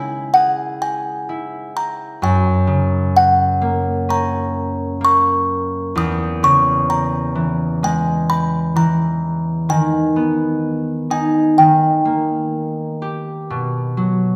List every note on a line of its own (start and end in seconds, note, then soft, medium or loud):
0.00 2.25 C#3 medium
0.00 2.25 G#3 soft
0.00 0.16 A#3 soft
0.00 1.29 E4 soft
0.00 0.34 G#5 medium
0.34 2.62 G#4 soft
0.34 0.81 F#5 medium
0.82 1.78 G#5 medium
1.29 3.90 E4 soft
1.77 2.23 A#5 medium
2.22 5.99 F#2 medium
2.22 3.18 G#5 medium
2.67 5.99 C#3 soft
3.17 4.12 F#5 medium
3.62 5.00 A#3 soft
4.09 6.99 C#4 medium
4.09 5.05 A#5 medium
5.01 8.22 A#3 soft
5.01 5.69 C#6 medium
5.96 9.73 E2 medium
5.96 6.44 D#6 medium
6.43 9.73 C#3 medium
6.43 6.90 C#6 medium
6.90 7.85 A#5 medium
7.35 8.74 E3 soft
7.83 9.73 G#3 soft
7.83 8.31 G#5 medium
8.30 8.77 B5 medium
8.76 9.73 E3 soft
8.76 9.65 A#5 medium
9.69 11.57 D#3 medium
9.69 11.10 G#5 medium
10.16 12.11 B3 soft
11.10 13.81 D#4 soft
11.10 11.32 G#5 medium
11.58 13.54 D#3 medium
11.58 12.49 G5 medium
12.05 13.56 A#3 soft
13.02 14.03 G4 soft
13.50 14.36 B2 medium
13.97 14.36 F#3 soft